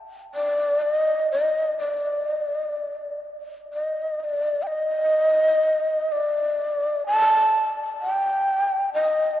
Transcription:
0.35 D5
0.82 D#5
1.32 D5
1.43 D#5
1.79 D5
3.73 D#5
4.21 D5 D#5
4.63 G5
4.67 D#5
6.12 D5
7.06 A5
8.02 G5
8.94 D#5

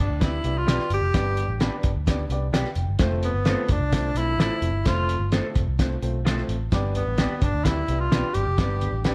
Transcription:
0.00 D4
0.09 D2
0.20 B3 D4 E4 G4 D5, kick, snare, closed hi-hat
0.44 C2 B3 D4 G4 D5, closed hi-hat
0.58 F4
0.67 B1 B3 D4 G4 B4 D5, snare, closed hi-hat
0.79 snare
0.90 G1 G4, closed hi-hat
1.02 F1
1.14 G1 G2 B3 D4 G4 D5, kick, snare, closed hi-hat
1.37 closed hi-hat
1.48 A1
1.60 B3 D4 G4 B4 D5, snare, closed hi-hat
1.83 G1, kick, closed hi-hat
1.95 D2
2.07 B3 D4 G4 D5, kick, snare, closed hi-hat
2.30 C2 B3 D4 G4 D5, closed hi-hat
2.53 B1 D4 G4 B4 F5, snare, closed hi-hat
2.65 snare
2.75 F1 G5, closed hi-hat
2.88 G1
2.99 A3 C4 F4 C5, kick, snare, closed hi-hat
3.23 B3, closed hi-hat
3.34 G1
3.45 A3 C4 F4 A4 C5, snare, closed hi-hat
3.69 F1 D4, kick, closed hi-hat
3.80 C2
3.93 A3 C4 F4 C5, kick, snare, closed hi-hat
4.15 B1 A3 C4 E4 F4 C5, closed hi-hat
4.38 A1 A3 C4 E4 F4 A4 C5, snare, closed hi-hat
4.62 F1, closed hi-hat
4.73 G1
4.85 F1 A3 C4 F4 C5, kick, snare, closed hi-hat
5.09 closed hi-hat
5.20 G1
5.32 A3 C4 F4 A4 C5, snare, closed hi-hat
5.55 F1, kick, closed hi-hat
5.67 C2
5.79 A3 C4 F4 C5, kick, snare, closed hi-hat
6.02 B1 A3 C4 F4 C5, closed hi-hat
6.25 A3 C4 F4 A4 C5, snare, closed hi-hat
6.38 snare
6.49 A1, closed hi-hat
6.72 G1 G2 B3 D4 G4 D5, kick, snare, closed hi-hat, low conga
6.95 B3, closed hi-hat, muted conga, high conga
7.07 A1
7.18 B3 D4 G4 B4 D5, snare, closed hi-hat, high conga
7.42 G1 D4, kick, closed hi-hat, muted conga
7.53 D2
7.64 B3 D4 E4 G4 D5, kick, snare, closed hi-hat, low conga
7.88 C2 B3 D4 G4 D5, closed hi-hat
8.00 F4
8.12 B1 B3 D4 G4 B4 D5, snare, closed hi-hat, muted conga, high conga
8.34 G1 G4, closed hi-hat, low conga
8.47 F1
8.58 G1 G2 B3 D4 G4 D5, kick, snare, closed hi-hat, muted conga, low conga
8.81 closed hi-hat, muted conga, high conga
8.93 A1
9.04 B3 D4 G4 B4 D5, snare, closed hi-hat, muted conga, high conga

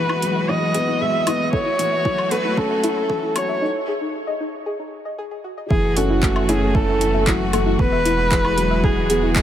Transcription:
Already playing: E1 E3 G#3 E4 F#4 B4
0.09 E4, low woodblock
0.22 F#3, closed hi-hat
0.35 E5
0.49 E3 E4 D#5
0.74 B3 G#4, closed hi-hat
0.88 E4
1.01 G#3 E5
1.14 E5
1.27 B3 E4 D#5, closed hi-hat, low woodblock
1.53 F#1 A3 E4 F#4 A4 C#5, kick
1.66 E4
1.79 E3, closed hi-hat
1.92 E5
2.05 F#3 E4, kick
2.18 low woodblock
2.31 A3 A4 B4, closed hi-hat
2.44 E4
2.57 C#4 A4, kick
2.70 E5
2.83 E4, closed hi-hat
3.10 E3 A4, kick
3.23 E4
3.36 F#3 C#5, closed hi-hat, low woodblock
3.49 E5
3.62 D#4
3.88 G#4
4.01 D#4
4.27 D#5
4.40 D#4
4.66 G#4
4.79 D#4
5.05 D#5
5.18 G#4
5.31 G#4
5.44 F#4
5.58 D#5
5.70 F#1 E3 A3 E4 F#4 G#4, kick
5.96 C#4 F#4 A4, closed hi-hat
6.10 E4
6.23 A3, kick, clap
6.36 E5, low woodblock
6.49 C#4 E4 G#4, closed hi-hat
6.75 E4 A4, kick
6.88 E4
7.01 E3, closed hi-hat
7.14 E5
7.27 F#3 E4 F#4, kick, clap
7.53 A3 A4, closed hi-hat, low woodblock
7.66 E4
7.79 E1 E3 G#3 B3 B4, kick
7.92 E5
8.05 E4, closed hi-hat
8.31 E3 G#4, kick, clap
8.45 E4, low woodblock
8.58 F#3, closed hi-hat
8.71 E5
8.84 E3 E4 G#4, kick
9.10 B3 G#4, closed hi-hat
9.23 E4
9.36 G#3, kick, clap

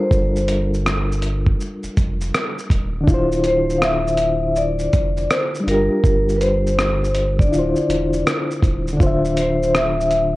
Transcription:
Already playing: G3 D4 F4 A4 A#4
0.00 C5
0.11 G1, kick, shaker
0.36 shaker
0.48 closed hi-hat, shaker
0.74 shaker
0.86 cross-stick, shaker
1.12 shaker
1.22 closed hi-hat, shaker
1.46 kick
1.60 shaker
1.84 F1, shaker
1.97 F1, kick, closed hi-hat, shaker
2.21 shaker
2.35 cross-stick, shaker
2.59 shaker
2.70 D#1, kick, closed hi-hat, shaker
3.00 D3 D4
3.07 D1 E4 F4, kick, shaker
3.14 C5
3.32 shaker
3.44 C5, closed hi-hat, shaker
3.70 shaker
3.78 F5
3.82 E5, cross-stick, shaker
4.08 shaker
4.18 closed hi-hat, shaker
4.56 D5, shaker
4.79 shaker
4.93 F1, kick, closed hi-hat, shaker
5.17 shaker
5.31 C5, cross-stick, shaker
5.55 shaker
5.60 G3 D4
5.67 G1 F4 G4 A#4, closed hi-hat, shaker
5.74 A#4
6.04 G1, kick, shaker
6.29 shaker
6.37 B4
6.41 C5, closed hi-hat, shaker
6.67 shaker
6.79 cross-stick, shaker
7.04 shaker
7.14 closed hi-hat, shaker
7.39 D5, kick, shaker
7.45 D3 D4
7.52 D1 E4 F4, shaker
7.58 C5
7.76 E1, shaker
7.89 E1, closed hi-hat, shaker
8.14 shaker
8.27 cross-stick, shaker
8.51 shaker
8.63 D#1, kick, closed hi-hat, shaker
8.88 shaker
8.93 D3 D4
9.00 D1 F4 C5, kick, shaker
9.06 E5
9.25 shaker
9.37 C5, closed hi-hat, shaker
9.63 shaker
9.75 E5, cross-stick, shaker
10.01 shaker
10.11 closed hi-hat, shaker

